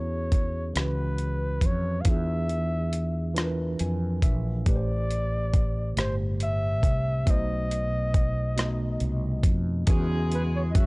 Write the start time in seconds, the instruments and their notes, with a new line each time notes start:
Already playing: fretless electric bass E2, tine electric piano E3 C#4 F#4 G#4, flugelhorn C#5
0.32 kick, closed hi-hat
0.73 fretless electric bass C#2, tine electric piano E3 C#4 F#4, cross-stick, closed hi-hat
0.78 tine electric piano B4, flugelhorn B4
1.18 closed hi-hat
1.61 fretless electric bass F2, kick, closed hi-hat
1.66 flugelhorn C#5
2.01 tine electric piano E3, flugelhorn F5, closed hi-hat
2.05 fretless electric bass E2, tine electric piano D4 F4 G#4, kick
2.09 flugelhorn E5
2.49 closed hi-hat
2.93 closed hi-hat
3.34 tine electric piano E3 D4 F4, cross-stick, closed hi-hat
3.39 tine electric piano A#4
3.45 tine electric piano B4
3.79 fretless electric bass F2, tine electric piano G#5, closed hi-hat
4.22 fretless electric bass A#1, tine electric piano E5, kick, closed hi-hat
4.64 fretless electric bass A1, tine electric piano A2 A3 G4, kick, closed hi-hat
4.69 tine electric piano B4, flugelhorn D5
4.76 tine electric piano C5
5.11 closed hi-hat
5.54 kick, closed hi-hat
5.95 fretless electric bass G1, tine electric piano A2 A3 G4, cross-stick, closed hi-hat
6.00 flugelhorn C5, tine electric piano C5
6.40 flugelhorn E5, closed hi-hat
6.83 fretless electric bass C2, kick, closed hi-hat
7.26 fretless electric bass B1, tine electric piano B2 A3 D#4, kick, closed hi-hat
7.30 tine electric piano C5, flugelhorn D#5
7.71 closed hi-hat
8.14 kick, closed hi-hat
8.56 tine electric piano B2 A3 D#4, cross-stick, closed hi-hat
8.61 tine electric piano D#5
9.00 fretless electric bass C2, closed hi-hat
9.44 fretless electric bass F2, kick, closed hi-hat
9.87 fretless electric bass E2, tonewheel organ C#3 G#3 B3 E4 F#4, tine electric piano E3 C#4 F#4, horn section G#3 G#4, kick, closed hi-hat
9.91 tine electric piano G#4
10.32 flugelhorn B4, closed hi-hat
10.56 flugelhorn C#5
10.71 horn section F#3 F#4, flugelhorn D#5
10.75 fretless electric bass F#2, flugelhorn E5, kick, closed hi-hat